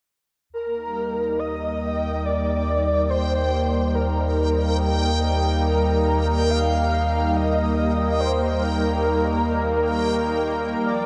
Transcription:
0, 0, Header, 1, 6, 480
1, 0, Start_track
1, 0, Key_signature, -3, "major"
1, 0, Tempo, 857143
1, 286, Time_signature, 3, 2, 24, 8
1, 6193, End_track
2, 0, Start_track
2, 0, Title_t, "Synth texture"
2, 0, Program_c, 0, 99
2, 288, Note_on_c, 0, 79, 70
2, 6057, Note_off_c, 0, 79, 0
2, 6193, End_track
3, 0, Start_track
3, 0, Title_t, "Soft synth lead"
3, 0, Program_c, 1, 80
3, 300, Note_on_c, 1, 70, 86
3, 780, Note_on_c, 1, 75, 93
3, 789, Note_off_c, 1, 70, 0
3, 1262, Note_on_c, 1, 74, 99
3, 1270, Note_off_c, 1, 75, 0
3, 1736, Note_on_c, 1, 72, 90
3, 1744, Note_off_c, 1, 74, 0
3, 2210, Note_on_c, 1, 70, 71
3, 2219, Note_off_c, 1, 72, 0
3, 2928, Note_off_c, 1, 70, 0
3, 3169, Note_on_c, 1, 70, 91
3, 3641, Note_on_c, 1, 77, 96
3, 3649, Note_off_c, 1, 70, 0
3, 4124, Note_on_c, 1, 75, 100
3, 4132, Note_off_c, 1, 77, 0
3, 4594, Note_on_c, 1, 72, 90
3, 4602, Note_off_c, 1, 75, 0
3, 4833, Note_on_c, 1, 70, 88
3, 4841, Note_off_c, 1, 72, 0
3, 5800, Note_off_c, 1, 70, 0
3, 6075, Note_on_c, 1, 74, 90
3, 6193, Note_off_c, 1, 74, 0
3, 6193, End_track
4, 0, Start_track
4, 0, Title_t, "Analog synth pad"
4, 0, Program_c, 2, 89
4, 367, Note_on_c, 2, 58, 82
4, 420, Note_on_c, 2, 63, 70
4, 480, Note_on_c, 2, 55, 63
4, 773, Note_on_c, 2, 70, 84
4, 6050, Note_off_c, 2, 63, 0
4, 6056, Note_off_c, 2, 55, 0
4, 6091, Note_on_c, 2, 53, 69
4, 6193, Note_off_c, 2, 53, 0
4, 6193, Note_off_c, 2, 58, 0
4, 6193, Note_off_c, 2, 70, 0
4, 6193, End_track
5, 0, Start_track
5, 0, Title_t, "Synth drone"
5, 0, Program_c, 3, 95
5, 288, Note_on_c, 3, 51, 67
5, 289, Note_on_c, 3, 58, 69
5, 6193, Note_off_c, 3, 51, 0
5, 6193, Note_off_c, 3, 58, 0
5, 6193, End_track
6, 0, Start_track
6, 0, Title_t, "Sub bass"
6, 0, Program_c, 4, 38
6, 278, Note_on_c, 4, 39, 79
6, 6018, Note_off_c, 4, 39, 0
6, 6037, Note_on_c, 4, 39, 79
6, 6193, Note_off_c, 4, 39, 0
6, 6193, End_track
0, 0, End_of_file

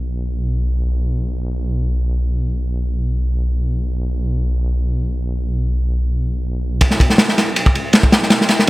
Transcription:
0, 0, Header, 1, 3, 480
1, 0, Start_track
1, 0, Tempo, 500000
1, 8350, End_track
2, 0, Start_track
2, 0, Title_t, "Detuned saw bass"
2, 0, Program_c, 0, 39
2, 0, Note_on_c, 0, 35, 92
2, 802, Note_off_c, 0, 35, 0
2, 817, Note_on_c, 0, 35, 91
2, 6526, Note_off_c, 0, 35, 0
2, 6539, Note_on_c, 0, 35, 101
2, 7338, Note_off_c, 0, 35, 0
2, 7435, Note_on_c, 0, 37, 103
2, 7598, Note_off_c, 0, 37, 0
2, 7614, Note_on_c, 0, 30, 90
2, 7777, Note_off_c, 0, 30, 0
2, 7791, Note_on_c, 0, 35, 96
2, 8350, Note_off_c, 0, 35, 0
2, 8350, End_track
3, 0, Start_track
3, 0, Title_t, "Drums"
3, 6537, Note_on_c, 9, 51, 89
3, 6540, Note_on_c, 9, 36, 111
3, 6630, Note_on_c, 9, 38, 45
3, 6633, Note_off_c, 9, 51, 0
3, 6636, Note_off_c, 9, 36, 0
3, 6721, Note_on_c, 9, 36, 89
3, 6726, Note_off_c, 9, 38, 0
3, 6728, Note_on_c, 9, 51, 71
3, 6814, Note_on_c, 9, 38, 44
3, 6817, Note_off_c, 9, 36, 0
3, 6824, Note_off_c, 9, 51, 0
3, 6895, Note_off_c, 9, 38, 0
3, 6895, Note_on_c, 9, 38, 108
3, 6900, Note_on_c, 9, 51, 88
3, 6991, Note_off_c, 9, 38, 0
3, 6994, Note_on_c, 9, 38, 58
3, 6996, Note_off_c, 9, 51, 0
3, 7083, Note_on_c, 9, 51, 62
3, 7085, Note_off_c, 9, 38, 0
3, 7085, Note_on_c, 9, 38, 45
3, 7179, Note_off_c, 9, 51, 0
3, 7181, Note_off_c, 9, 38, 0
3, 7258, Note_on_c, 9, 51, 81
3, 7354, Note_off_c, 9, 51, 0
3, 7356, Note_on_c, 9, 36, 85
3, 7443, Note_on_c, 9, 51, 65
3, 7452, Note_off_c, 9, 36, 0
3, 7539, Note_off_c, 9, 51, 0
3, 7612, Note_on_c, 9, 51, 77
3, 7619, Note_on_c, 9, 38, 103
3, 7708, Note_off_c, 9, 51, 0
3, 7712, Note_on_c, 9, 36, 98
3, 7715, Note_off_c, 9, 38, 0
3, 7799, Note_on_c, 9, 38, 105
3, 7800, Note_on_c, 9, 51, 71
3, 7808, Note_off_c, 9, 36, 0
3, 7895, Note_off_c, 9, 38, 0
3, 7896, Note_off_c, 9, 51, 0
3, 7896, Note_on_c, 9, 38, 48
3, 7970, Note_off_c, 9, 38, 0
3, 7970, Note_on_c, 9, 38, 92
3, 7970, Note_on_c, 9, 51, 84
3, 8066, Note_off_c, 9, 38, 0
3, 8066, Note_off_c, 9, 51, 0
3, 8074, Note_on_c, 9, 38, 53
3, 8146, Note_on_c, 9, 51, 67
3, 8153, Note_off_c, 9, 38, 0
3, 8153, Note_on_c, 9, 38, 50
3, 8242, Note_off_c, 9, 51, 0
3, 8249, Note_off_c, 9, 38, 0
3, 8249, Note_on_c, 9, 38, 43
3, 8345, Note_off_c, 9, 38, 0
3, 8350, End_track
0, 0, End_of_file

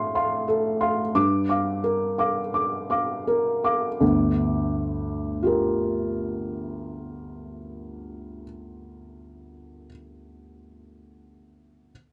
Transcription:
0, 0, Header, 1, 2, 480
1, 0, Start_track
1, 0, Key_signature, -2, "minor"
1, 0, Tempo, 1327434
1, 415, Tempo, 1398601
1, 895, Tempo, 1459854
1, 1375, Time_signature, 4, 2, 24, 8
1, 1375, Tempo, 1418440
1, 4123, End_track
2, 0, Start_track
2, 0, Title_t, "Felt piano"
2, 0, Program_c, 0, 0
2, 0, Control_c, 0, 64, 127
2, 0, Note_on_c, 0, 45, 52
2, 0, Note_on_c, 0, 69, 45
2, 0, Note_on_c, 0, 77, 40
2, 0, Note_on_c, 0, 84, 46
2, 50, Note_off_c, 0, 84, 0
2, 55, Note_off_c, 0, 77, 0
2, 55, Note_on_c, 0, 77, 41
2, 56, Note_on_c, 0, 84, 44
2, 160, Note_off_c, 0, 77, 0
2, 160, Note_off_c, 0, 84, 0
2, 173, Note_off_c, 0, 69, 0
2, 173, Note_on_c, 0, 69, 45
2, 292, Note_on_c, 0, 77, 40
2, 292, Note_on_c, 0, 84, 42
2, 366, Note_off_c, 0, 69, 0
2, 402, Note_off_c, 0, 45, 0
2, 402, Note_off_c, 0, 84, 0
2, 403, Note_off_c, 0, 77, 0
2, 416, Note_on_c, 0, 43, 50
2, 416, Note_on_c, 0, 86, 60
2, 422, Control_c, 0, 64, 0
2, 509, Control_c, 0, 64, 127
2, 529, Note_off_c, 0, 86, 0
2, 533, Note_on_c, 0, 77, 39
2, 534, Note_on_c, 0, 86, 40
2, 640, Note_off_c, 0, 77, 0
2, 641, Note_off_c, 0, 86, 0
2, 652, Note_on_c, 0, 70, 38
2, 770, Note_on_c, 0, 77, 40
2, 773, Note_on_c, 0, 86, 41
2, 845, Note_off_c, 0, 70, 0
2, 881, Note_off_c, 0, 77, 0
2, 882, Note_off_c, 0, 86, 0
2, 893, Note_on_c, 0, 86, 44
2, 1008, Note_off_c, 0, 86, 0
2, 1011, Note_on_c, 0, 77, 37
2, 1013, Note_on_c, 0, 86, 39
2, 1121, Note_off_c, 0, 77, 0
2, 1123, Note_off_c, 0, 86, 0
2, 1134, Note_on_c, 0, 70, 40
2, 1255, Note_on_c, 0, 77, 36
2, 1256, Note_on_c, 0, 86, 42
2, 1328, Note_off_c, 0, 70, 0
2, 1362, Note_off_c, 0, 43, 0
2, 1362, Note_off_c, 0, 77, 0
2, 1363, Note_off_c, 0, 86, 0
2, 1374, Note_on_c, 0, 38, 40
2, 1375, Note_on_c, 0, 31, 37
2, 1383, Control_c, 0, 64, 0
2, 1471, Control_c, 0, 64, 127
2, 1855, Note_on_c, 0, 65, 36
2, 1862, Note_on_c, 0, 67, 33
2, 1869, Note_on_c, 0, 70, 34
2, 2872, Note_off_c, 0, 38, 0
2, 2873, Note_off_c, 0, 31, 0
2, 3354, Note_off_c, 0, 65, 0
2, 3360, Note_off_c, 0, 67, 0
2, 3368, Note_off_c, 0, 70, 0
2, 4052, Control_c, 0, 64, 0
2, 4123, End_track
0, 0, End_of_file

